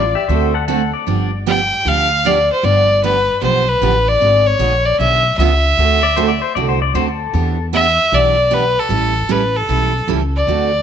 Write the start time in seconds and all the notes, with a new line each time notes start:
Already playing: A1 F4 D5
0.15 G4 E5
0.28 D2 D3 A3 C4 F#4 A4 C5 E5
0.54 A4 F#5
0.68 D3 A3 C4 F#4 A4 F#5
0.93 D5
1.07 G1 D3 F3 B3 D4 G4
1.46 D3 F3 B3 D4 G4 G5
1.85 D2 D3 F3 B3 D4 G4 F5
2.25 D3 F3 B3 D4 G4 D5
2.52 C5
2.63 G1 D3 F3 B3 D4 G4 D5
3.04 D3 F3 B3 D4 G4 B4
3.42 B1 D3 F3 B3 D4 G4 C5
3.68 B4
3.81 A1 D3 F3 B3 D4 G4
4.08 D5
4.21 G#1 D3 G#3 B3 F4 G#4
4.46 C#5
4.59 A#1 D3 G#3 B3 F4 G#4
4.85 D5
4.99 B1 D3 G#3 B3 F4 G#4 E5
5.37 C#2 D3 G#3 B3 F4 G#4 E5
5.77 D2 D3 A3 C4 F#4 A4
6.03 D5
6.16 D3 A3 C4 F#4 A4 C5
6.28 D5
6.42 C5
6.55 C2 D3 A3 C4 F#4 A4 D5
6.69 C5
6.82 D5
6.94 D2 D3 A3 C4 F#4 A4 C5
7.08 A4
7.33 E2 E3 B3 D4 G4
7.73 E3 B3 D4 G4 E5
8.12 B1 E3 B3 D4 G4 D5
8.51 E3 B3 D4 G4 B4
8.79 A4
8.89 A1 E3 G3 C#4 E4 A4
9.29 A1 E3 G3 C#4 E4 A4 B4
9.56 A4
9.69 B1 E3 G3 C#4 E4 A4
10.07 C#2 E3 G3 C#4 E4 A4
10.36 D5
10.47 D2 D3 A3 C4 F#4 A4